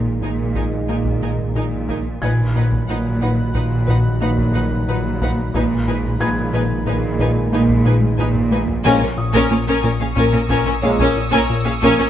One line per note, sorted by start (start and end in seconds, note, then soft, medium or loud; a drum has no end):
0.00 0.14 A#1 soft
0.00 2.19 A#1 medium
0.00 0.15 A#2 medium
0.00 2.05 D#3 medium
0.00 2.05 G#3 soft
0.00 2.05 A#3 soft
0.00 2.05 D#4 soft
0.22 0.81 A#1 soft
0.22 0.42 A#2 soft
0.22 0.81 A#2 medium
0.22 0.31 D#4 soft
0.22 0.31 A#4 soft
0.22 0.30 G#5 soft
0.22 taiko medium
0.55 0.76 A#2 medium
0.55 0.64 D#4 soft
0.55 0.64 A#4 soft
0.55 0.64 G#5 soft
0.55 taiko medium
0.89 1.48 A#1 medium
0.89 1.48 A#2 medium
0.89 1.09 A#3 medium
0.89 0.97 D#4 soft
0.89 0.97 A#4 soft
0.89 0.97 G#5 soft
1.05 taiko medium
1.22 1.42 A#2 medium
1.22 1.31 D#4 soft
1.22 1.30 A#4 soft
1.22 1.30 G#5 soft
1.38 taiko medium
1.55 2.14 A#1 soft
1.55 1.75 A#2 medium
1.55 2.14 A#2 medium
1.55 1.64 D#4 soft
1.55 1.64 A#4 soft
1.55 1.65 G#5 soft
1.88 2.09 A#3 medium
1.88 1.98 D#4 soft
1.88 1.96 A#4 soft
1.88 1.97 G#5 soft
1.88 taiko medium
2.22 5.50 A#1 medium
2.22 2.81 A#1 medium
2.22 2.81 A#2 medium
2.22 2.43 A#2 medium
2.22 5.50 D#3 medium
2.22 5.50 F#3 medium
2.22 5.50 D#4 medium
2.22 2.31 D#4 medium
2.22 2.31 B4 soft
2.22 2.31 F#5 soft
2.22 4.17 G#5 soft
2.22 8.48 B5 soft
2.22 7.16 F#6 soft
2.22 4.17 G#6 soft
2.22 taiko medium
2.55 2.76 A#2 medium
2.55 2.63 D#4 soft
2.55 2.64 B4 soft
2.55 2.65 F#5 soft
2.72 taiko medium
2.89 3.47 A#1 medium
2.89 3.47 A#2 medium
2.89 3.09 A#2 medium
2.89 2.97 D#4 medium
2.89 2.97 B4 soft
2.89 2.97 F#5 soft
2.89 8.48 A#5 soft
3.22 3.42 A#2 medium
3.22 3.30 D#4 soft
3.22 3.30 B4 soft
3.22 3.30 F#5 soft
3.54 4.14 A#1 medium
3.54 3.75 A#2 medium
3.54 4.14 A#2 medium
3.54 3.62 D#4 soft
3.54 3.63 B4 soft
3.54 3.62 F#5 soft
3.54 taiko medium
3.87 4.08 A#2 medium
3.87 3.96 D#4 soft
3.87 3.95 B4 soft
3.87 3.97 F#5 soft
3.87 taiko medium
4.21 4.81 A#1 medium
4.21 4.81 A#2 medium
4.21 4.42 A#3 medium
4.21 4.29 D#4 medium
4.21 4.30 B4 soft
4.21 4.30 F#5 soft
4.38 taiko medium
4.55 4.75 A#2 medium
4.55 4.63 D#4 soft
4.55 4.63 B4 soft
4.55 4.63 F#5 soft
4.71 taiko medium
4.88 5.47 A#1 medium
4.88 5.47 A#2 medium
4.88 5.08 A#2 medium
4.88 4.97 D#4 medium
4.88 4.97 B4 soft
4.88 4.97 F#5 soft
5.21 5.41 A#3 medium
5.21 5.31 D#4 medium
5.21 5.30 B4 soft
5.21 5.31 F#5 medium
5.21 taiko medium
5.54 6.13 A#1 medium
5.54 8.81 A#1 medium
5.54 6.12 A#2 medium
5.54 5.74 A#2 medium
5.54 8.68 D#3 medium
5.54 8.68 G#3 medium
5.54 8.69 G#3 medium
5.54 5.63 D#4 medium
5.54 8.69 D#4 medium
5.54 5.62 B4 soft
5.54 5.63 G#5 medium
5.54 taiko medium
5.87 6.07 A#2 medium
5.87 5.96 D#4 medium
5.87 5.96 B4 medium
5.87 5.95 G#5 soft
6.03 taiko medium
6.20 6.79 A#1 medium
6.20 6.40 A#2 medium
6.20 6.79 A#2 medium
6.20 6.29 D#4 medium
6.20 6.28 B4 medium
6.20 6.29 G#5 medium
6.20 8.15 B5 soft
6.20 8.15 G#6 medium
6.53 6.73 A#2 medium
6.53 6.62 D#4 medium
6.53 6.62 B4 medium
6.53 6.62 G#5 medium
6.86 7.45 A#1 medium
6.86 7.06 A#2 medium
6.86 7.45 A#2 medium
6.86 6.94 D#4 medium
6.86 6.95 B4 medium
6.86 6.96 G#5 medium
6.86 taiko medium
7.19 7.39 A#2 medium
7.19 7.28 D#4 medium
7.19 7.28 B4 medium
7.19 7.29 G#5 medium
7.19 taiko medium
7.53 8.12 A#1 medium
7.53 8.11 A#2 medium
7.53 7.73 A#3 medium
7.53 7.61 D#4 medium
7.53 7.61 B4 medium
7.53 7.61 G#5 medium
7.69 taiko medium
7.85 8.06 A#2 medium
7.85 7.94 D#4 medium
7.85 7.93 B4 medium
7.85 7.94 G#5 medium
8.01 taiko high medium
8.18 8.78 A#1 medium
8.18 8.39 A#2 medium
8.18 8.77 A#2 medium
8.18 8.27 D#4 medium
8.18 8.27 B4 medium
8.18 8.26 G#5 medium
8.18 taiko mid medium
8.34 taiko low-mid medium
8.51 8.72 A#3 medium
8.51 8.61 D#4 medium
8.51 8.59 B4 soft
8.51 8.60 G#5 medium
8.51 taiko high medium
8.67 taiko low medium
8.84 12.10 A#1 medium
8.84 8.92 A#1 medium
8.84 9.80 A#2 medium
8.84 9.05 A#2 medium
8.84 8.92 A#2 medium
8.84 9.08 F3 medium
8.84 9.08 G#3 medium
8.84 9.08 A#3 medium
8.84 9.01 C#4 medium
8.84 9.08 C#4 medium
8.84 9.00 A#4 medium
8.84 8.98 G#5 medium
8.84 12.10 C#6 medium
8.84 taiko medium
8.99 9.08 A#2 medium
8.99 9.08 C#4 medium
8.99 9.09 A#4 soft
8.99 9.06 G#5 medium
9.18 9.38 A#2 medium
9.18 11.12 D#6 soft
9.33 9.40 A#2 medium
9.33 9.49 C#4 medium
9.33 9.50 A#4 medium
9.33 9.48 G#5 medium
9.33 taiko medium
9.49 9.58 A#1 medium
9.49 9.57 A#2 medium
9.49 9.71 A#2 medium
9.49 9.57 C#4 medium
9.49 9.58 A#4 medium
9.49 9.56 G#5 soft
9.49 12.10 D#6 medium
9.67 9.74 A#2 medium
9.67 9.82 C#4 medium
9.67 9.83 A#4 medium
9.67 9.82 G#5 medium
9.83 9.90 A#1 medium
9.83 9.90 A#2 medium
9.83 10.04 A#2 medium
9.83 9.90 C#4 soft
9.83 9.92 A#4 medium
9.83 9.90 G#5 medium
10.00 10.07 A#2 medium
10.00 10.07 C#4 medium
10.00 10.07 G#4 soft
10.00 10.06 F5 medium
10.15 10.23 A#1 medium
10.15 10.37 A#2 medium
10.15 10.23 A#2 medium
10.15 10.31 C#4 medium
10.15 10.33 A#4 medium
10.15 10.32 G#5 medium
10.15 12.10 E6 medium
10.15 taiko medium
10.32 10.39 A#2 medium
10.32 10.39 C#4 medium
10.32 10.41 A#4 medium
10.32 10.39 G#5 medium
10.49 10.57 A#1 medium
10.49 10.56 A#2 medium
10.49 10.70 A#2 medium
10.49 10.65 C#4 medium
10.49 10.66 A#4 medium
10.49 10.65 G#5 medium
10.49 taiko medium
10.66 10.72 A#2 medium
10.66 10.73 C#4 medium
10.66 10.74 A#4 medium
10.66 10.73 G#5 medium
10.82 10.90 A#1 medium
10.82 10.89 A#2 medium
10.82 11.06 F3 medium
10.82 11.06 G#3 medium
10.82 11.06 A#3 medium
10.82 11.03 A#3 medium
10.82 11.05 C#4 medium
10.82 10.89 C#4 medium
10.82 10.90 G#4 soft
10.82 10.90 F5 medium
10.99 11.06 A#2 medium
10.99 11.15 C#4 medium
10.99 11.15 A#4 medium
10.99 11.15 G#5 medium
10.99 taiko medium
11.17 11.36 A#2 medium
11.32 11.39 A#2 medium
11.32 11.48 C#4 medium
11.32 11.49 A#4 medium
11.32 11.48 G#5 medium
11.32 taiko medium
11.50 11.70 A#2 medium
11.65 11.72 A#2 medium
11.65 11.72 C#4 medium
11.65 11.72 G#4 medium
11.65 11.73 F5 medium
11.82 11.89 A#1 medium
11.82 11.89 A#2 medium
11.82 12.03 A#3 medium
11.82 11.98 C#4 medium
11.82 11.98 A#4 medium
11.82 11.98 G#5 loud
11.82 taiko medium
11.98 12.05 A#2 medium
11.98 12.06 C#4 medium
11.98 12.06 A#4 medium
11.98 12.06 G#5 medium